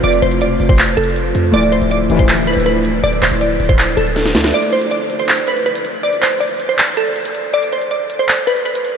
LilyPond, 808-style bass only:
\new Staff \with { instrumentName = "808-style bass" } { \clef bass \time 4/4 \key d \dorian \tempo 4 = 160 f,,8 f,,8 e,,8 f,,4 f,,4 f,8 | d,,8. d,,8. d,,4~ d,,16 d,,4~ d,,16 | d,,8 d,,16 d,,8. d,,4 d,,4 d,8 | r1 |
r1 | r1 | }